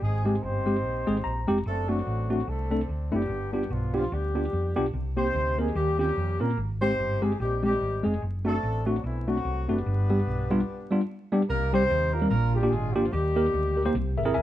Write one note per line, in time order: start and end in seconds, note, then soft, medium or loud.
0.01 0.36 G#1 medium
0.01 0.63 G#2 medium
0.01 0.25 G#3 medium
0.01 0.43 C4 medium
0.01 0.43 D#4 medium
0.01 0.25 G#4 medium
0.25 0.34 G#3 medium
0.25 0.42 G#3 medium
0.25 0.34 C4 medium
0.25 0.34 D#4 medium
0.25 0.34 G4 medium
0.25 0.42 G#4 medium
0.43 0.84 G1 medium
0.43 1.49 C4 medium
0.43 1.45 D#4 medium
0.43 1.45 G4 medium
0.43 1.49 C5 loud
0.66 0.75 G#3 medium
0.66 0.75 C4 medium
0.66 0.75 D#4 medium
0.66 0.75 G4 medium
0.84 1.04 A#1 medium
1.06 1.23 G#1 medium
1.06 1.16 G#3 medium
1.06 1.16 C4 medium
1.06 1.16 D#4 medium
1.06 1.16 G#4 medium
1.24 1.45 A#1 medium
1.24 1.62 A#5 medium
1.48 1.63 F1 medium
1.48 1.57 G#3 medium
1.48 1.57 C4 medium
1.48 1.57 D#4 medium
1.48 1.57 G4 medium
1.66 2.01 F#1 medium
1.66 1.89 A3 medium
1.66 1.88 C4 medium
1.66 2.44 D4 medium
1.66 1.89 A4 medium
1.89 2.30 F#3 medium
1.89 1.98 A3 medium
1.89 2.49 A3 medium
1.89 1.98 C4 medium
1.89 2.48 C4 medium
1.89 1.98 D4 medium
1.89 1.98 F#4 medium
1.89 2.30 F#4 medium
2.07 2.42 A1 medium
2.30 2.47 F#3 medium
2.30 2.39 A3 medium
2.30 2.39 C4 medium
2.30 2.39 D4 medium
2.30 2.39 F#4 medium
2.30 2.47 F#4 medium
2.48 2.82 C2 medium
2.48 2.89 A3 medium
2.48 3.26 C4 medium
2.48 3.13 D4 medium
2.48 2.89 A4 medium
2.71 2.80 A3 medium
2.71 2.80 C4 medium
2.71 2.80 D4 medium
2.71 2.80 A4 medium
2.89 3.09 D2 medium
3.12 3.27 F#1 medium
3.12 3.51 G3 medium
3.12 3.21 A3 medium
3.12 3.91 B3 medium
3.12 3.21 C4 medium
3.12 3.21 D4 medium
3.12 3.91 D4 medium
3.12 3.21 E4 medium
3.12 3.51 G4 medium
3.29 3.64 G1 medium
3.29 3.90 G2 medium
3.53 3.70 G3 medium
3.53 3.62 B3 medium
3.53 3.62 D4 medium
3.53 3.62 F4 medium
3.53 3.62 G4 medium
3.53 3.70 G4 medium
3.70 4.05 B1 medium
3.70 3.95 F3 medium
3.70 3.95 F4 medium
3.94 4.11 F3 medium
3.94 4.03 B3 medium
3.94 4.03 D4 medium
3.94 4.03 F4 medium
3.94 4.11 F4 medium
3.94 4.03 G4 medium
4.12 4.47 D2 medium
4.12 4.77 G3 medium
4.12 4.90 B3 medium
4.12 4.90 D4 medium
4.12 4.77 G4 medium
4.35 4.44 B3 medium
4.35 4.44 D4 medium
4.35 4.44 F4 medium
4.35 4.44 G4 medium
4.53 4.73 F2 medium
4.76 4.91 B1 medium
4.76 4.85 B3 medium
4.76 4.85 D4 medium
4.76 4.85 F4 medium
4.76 4.85 G4 medium
4.93 5.28 C2 medium
4.93 5.55 C3 medium
5.17 5.26 A#3 medium
5.17 5.26 C4 medium
5.17 5.56 C4 medium
5.17 5.26 D#4 medium
5.17 5.72 D#4 medium
5.17 5.26 G4 medium
5.17 5.72 G4 medium
5.17 5.56 C5 loud
5.35 5.69 D2 medium
5.58 5.76 G#3 medium
5.58 5.67 A#3 medium
5.58 5.67 C4 medium
5.58 5.67 D#4 medium
5.58 5.76 G#4 medium
5.58 5.67 A#4 medium
5.75 6.10 D#2 loud
5.75 6.36 D#3 medium
5.75 5.99 G3 medium
5.75 6.00 A#3 medium
5.75 6.00 C#4 medium
5.75 5.99 G4 medium
5.99 6.38 G3 medium
5.99 6.40 A#3 medium
5.99 6.08 C4 medium
5.99 6.08 C#4 medium
5.99 6.54 C#4 medium
5.99 6.08 F4 medium
5.99 6.08 G4 medium
5.99 6.38 G4 medium
6.17 6.37 F2 medium
6.40 6.55 A#2 medium
6.40 6.57 A#3 medium
6.40 6.49 C4 medium
6.40 6.49 C#4 medium
6.40 6.49 F4 medium
6.40 6.57 A#4 medium
6.40 6.49 A#4 medium
6.57 6.92 G#1 medium
6.57 7.19 G#2 medium
6.81 6.90 G#3 medium
6.81 7.19 C4 medium
6.81 6.90 C4 medium
6.81 6.90 D#4 medium
6.81 7.39 D#4 medium
6.81 7.38 G4 medium
6.81 6.90 G4 medium
6.81 7.19 C5 loud
6.99 7.33 G1 medium
7.22 7.31 G#3 medium
7.22 7.40 G#3 medium
7.22 7.31 C4 medium
7.22 7.31 D#4 medium
7.22 7.31 G4 medium
7.22 7.40 G#4 medium
7.39 7.75 A#1 medium
7.39 7.62 G3 medium
7.39 7.64 C4 medium
7.39 7.64 D#4 medium
7.39 7.62 G4 medium
7.63 8.03 G3 medium
7.63 7.72 G#3 medium
7.63 7.72 C4 medium
7.63 8.18 C4 medium
7.63 7.72 D#4 medium
7.63 8.18 D#4 medium
7.63 7.72 G4 medium
7.63 8.03 G4 medium
7.81 8.01 G#1 medium
8.03 8.19 F1 medium
8.03 8.13 G#3 medium
8.03 8.22 G#3 medium
8.03 8.13 C4 medium
8.03 8.13 D#4 medium
8.03 8.13 G#4 medium
8.03 8.22 G#4 medium
8.22 8.57 F#1 medium
8.45 8.54 A3 medium
8.45 8.84 A3 medium
8.45 8.54 C4 medium
8.45 9.04 C4 medium
8.45 8.54 D4 medium
8.45 9.24 D4 medium
8.45 8.54 F#4 medium
8.45 8.84 A4 medium
8.63 8.98 A1 medium
8.86 9.04 F#3 medium
8.86 8.95 A3 medium
8.86 8.95 C4 medium
8.86 8.95 D4 medium
8.86 9.04 F#4 medium
8.86 8.95 F#4 medium
9.04 9.38 B1 medium
9.04 9.26 E3 medium
9.04 9.27 A3 medium
9.04 9.28 C4 medium
9.04 9.26 E4 medium
9.28 9.69 F#3 medium
9.28 9.36 A3 medium
9.28 9.82 A3 medium
9.28 9.37 C4 medium
9.28 9.82 C4 medium
9.28 9.36 D4 medium
9.28 9.36 F#4 medium
9.28 9.69 F#4 medium
9.45 9.65 C2 medium
9.69 9.83 F#1 medium
9.69 9.77 A3 medium
9.69 11.05 B3 medium
9.69 9.77 C4 medium
9.69 9.77 D4 medium
9.69 11.05 D4 medium
9.69 9.77 F#4 medium
9.69 11.05 G4 medium
9.69 11.05 B4 medium
9.86 10.21 G1 medium
9.86 10.47 G2 medium
10.10 10.18 G3 medium
10.10 10.18 B3 medium
10.10 10.18 D4 medium
10.10 10.19 G4 medium
10.27 10.62 B1 medium
10.50 10.59 G3 medium
10.50 10.59 B3 medium
10.50 10.60 D4 medium
10.50 10.59 F4 medium
10.91 11.00 G3 medium
10.91 11.00 B3 medium
10.91 11.00 D4 medium
10.91 11.00 F4 medium
11.32 11.41 G3 medium
11.32 11.41 B3 medium
11.32 11.41 D4 medium
11.32 11.41 G4 medium
11.49 11.84 C2 loud
11.49 12.10 C3 medium
11.49 11.72 A#3 loud
11.49 11.73 D#4 medium
11.49 11.72 G4 medium
11.49 11.72 A#4 loud
11.73 11.82 G3 medium
11.73 12.11 C4 loud
11.73 11.82 C4 medium
11.73 11.82 D#4 medium
11.73 12.28 D#4 medium
11.73 12.27 G4 medium
11.73 11.82 G4 medium
11.73 12.11 C5 loud
11.90 12.25 D#2 loud
12.13 12.28 A#3 medium
12.13 12.18 D#4 medium
12.13 12.19 F4 medium
12.13 12.28 A#4 loud
12.21 12.31 G3 medium
12.21 12.31 C4 medium
12.21 12.31 D#4 medium
12.21 12.31 A#4 medium
12.30 12.66 A#1 loud
12.30 12.92 A#2 medium
12.30 12.53 A#3 medium
12.30 13.09 D4 medium
12.30 12.92 F4 medium
12.30 12.53 A#4 loud
12.54 12.70 G3 medium
12.54 12.59 F4 medium
12.54 12.70 G4 medium
12.54 12.59 G#4 medium
12.62 12.72 A#3 medium
12.62 12.72 D4 medium
12.62 12.72 F4 medium
12.62 12.72 G4 medium
12.70 13.07 G#1 medium
12.70 12.95 G#3 medium
12.70 12.95 G#4 medium
12.93 13.12 F3 medium
12.93 13.05 A#3 medium
12.93 13.04 D4 medium
12.93 13.12 F4 medium
12.93 13.05 F4 medium
12.93 13.05 G4 medium
13.11 13.48 D#2 loud
13.11 13.73 D#3 medium
13.11 13.94 G3 medium
13.11 13.91 A#3 medium
13.11 13.91 D#4 medium
13.11 13.94 G4 medium
13.36 13.45 A#3 medium
13.36 13.45 D#4 medium
13.36 13.45 G4 medium
13.36 13.45 A#4 medium
13.54 13.88 D2 medium
13.77 13.81 G4 medium
13.77 13.82 A#4 medium
13.85 13.94 A#3 medium
13.85 13.94 D#4 medium
13.85 13.94 G4 medium
13.85 13.94 C5 medium
13.94 14.15 C2 loud
13.94 14.42 C3 medium
14.17 14.33 G#1 medium
14.17 14.22 G#4 medium
14.17 14.22 A#4 loud
14.17 14.33 E5 medium
14.25 14.35 C4 medium
14.25 14.35 E4 medium
14.25 14.35 G#4 medium
14.25 14.34 A#4 medium
14.34 14.42 D#1 medium
14.34 14.42 A#4 medium
14.34 14.42 E5 medium
14.34 14.42 G#5 medium